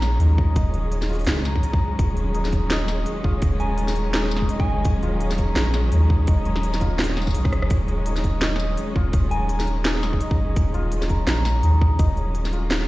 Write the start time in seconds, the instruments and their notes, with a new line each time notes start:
Already playing: sub bass A#1, string section D#3 F#3 G#3 C#4, santur D#4 F4 A#4 D#5
0.02 snare, tambourine
0.20 sub bass D#2, santur D#4, closed hi-hat
0.38 kick
0.56 sub bass D#1, santur D#5, kick, closed hi-hat
0.74 closed hi-hat
0.92 closed hi-hat
1.02 snare, tambourine
1.09 santur F4, closed hi-hat
1.13 closed hi-hat
1.15 closed hi-hat
1.19 closed hi-hat
1.21 closed hi-hat
1.25 sub bass C#2, snare, closed hi-hat
1.27 closed hi-hat
1.37 snare
1.45 santur A#4, snare, tambourine
1.56 kick
1.63 closed hi-hat
1.73 kick
1.99 sub bass D#1, kick, closed hi-hat
2.17 closed hi-hat
2.34 santur D#4, closed hi-hat
2.45 snare, tambourine
2.52 kick, closed hi-hat
2.70 santur D#5, snare, closed hi-hat
2.88 snare, tambourine
3.06 closed hi-hat
3.24 sub bass D#1, santur F4, kick
3.42 sub bass D#1, kick, closed hi-hat
3.60 santur A#4, synth bell G#5, closed hi-hat
3.78 closed hi-hat
3.88 snare, tambourine
3.96 closed hi-hat
4.14 santur D#4, snare, closed hi-hat
4.24 snare
4.31 tambourine
4.37 snare
4.42 kick
4.49 santur D#5, closed hi-hat
4.60 synth bell G#5, kick
4.67 sub bass F#1
4.85 sub bass D#1, kick, closed hi-hat
5.03 santur F4, closed hi-hat
5.21 closed hi-hat
5.31 snare, tambourine
5.38 santur A#4, kick, closed hi-hat
5.56 sub bass A#1, snare, closed hi-hat
5.74 snare, tambourine
5.92 sub bass D#2, santur D#4, closed hi-hat
6.10 kick
6.27 sub bass D#1, santur D#5, kick, closed hi-hat
6.45 closed hi-hat
6.56 snare
6.63 closed hi-hat
6.74 snare, tambourine
6.81 santur F4, kick, closed hi-hat
6.99 snare
7.04 closed hi-hat
7.10 snare
7.17 santur D#4, snare, tambourine
7.22 tambourine
7.27 kick, tambourine
7.31 tambourine
7.35 sub bass C#2, closed hi-hat
7.45 kick, cross-stick
7.52 sub bass F#1, cross-stick, closed hi-hat
7.62 cross-stick
7.70 sub bass D#1, kick, closed hi-hat
7.88 closed hi-hat
8.06 santur D#4, closed hi-hat
8.16 snare, tambourine
8.24 kick, closed hi-hat
8.41 santur D#5, snare, closed hi-hat
8.56 snare, tambourine
8.77 closed hi-hat
8.96 sub bass D#1, santur F4, kick
9.13 sub bass D#1, kick, closed hi-hat
9.31 santur A#4, synth bell G#5, closed hi-hat
9.49 closed hi-hat
9.60 snare, tambourine
9.67 closed hi-hat
9.85 santur D#4, snare, closed hi-hat
9.95 snare
10.03 snare, tambourine
10.13 kick
10.21 santur D#5, closed hi-hat
10.31 kick
10.38 sub bass F#1
10.56 sub bass D#1, kick, closed hi-hat
10.74 santur F4, closed hi-hat
10.92 closed hi-hat
11.02 snare, tambourine
11.09 santur A#4, kick, closed hi-hat
11.27 sub bass A#1, snare, closed hi-hat
11.45 snare, tambourine
11.63 sub bass D#2, santur D#4, closed hi-hat
11.81 kick
11.99 sub bass D#1, santur D#5, kick, closed hi-hat
12.17 closed hi-hat
12.35 closed hi-hat
12.45 snare, tambourine
12.53 santur F4, closed hi-hat
12.71 snare, closed hi-hat
12.81 snare